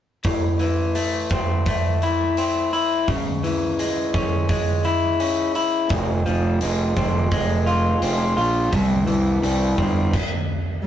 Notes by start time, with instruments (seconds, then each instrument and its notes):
0.24 clean electric guitar A2, kick, open hi-hat
0.59 clean electric guitar E3, open hi-hat
0.95 clean electric guitar A3, open hi-hat
1.30 clean electric guitar C4, kick, open hi-hat
1.66 clean electric guitar A3, kick, open hi-hat
2.02 clean electric guitar E4, open hi-hat
2.37 clean electric guitar C4, open hi-hat
2.73 clean electric guitar E4, open hi-hat
3.08 clean electric guitar C#3, kick, open hi-hat
3.43 clean electric guitar E3, open hi-hat
3.79 clean electric guitar G#3, open hi-hat
4.14 clean electric guitar C#4, kick, open hi-hat
4.49 clean electric guitar G#3, kick, open hi-hat
4.84 clean electric guitar E4, open hi-hat
5.20 clean electric guitar C#4, open hi-hat
5.55 clean electric guitar E4, open hi-hat
5.89 fingered electric bass F1, clean electric guitar F2, kick, open hi-hat
6.26 fingered electric bass F1, clean electric guitar F3, open hi-hat
6.61 fingered electric bass F1, clean electric guitar G#3, open hi-hat
6.97 fingered electric bass F1, clean electric guitar C4, kick, open hi-hat
7.31 fingered electric bass F1, clean electric guitar G#3, kick, open hi-hat
7.66 clean electric guitar F4, open hi-hat
8.02 fingered electric bass F1, clean electric guitar C4, open hi-hat
8.37 fingered electric bass A#1, clean electric guitar F4, open hi-hat
8.71 fingered electric bass C2, clean electric guitar C3, kick, open hi-hat
9.07 fingered electric bass C2, clean electric guitar E3, open hi-hat
9.42 fingered electric bass C2, clean electric guitar G3, open hi-hat
9.78 fingered electric bass G1, clean electric guitar C4, kick, open hi-hat
10.13 kick, crash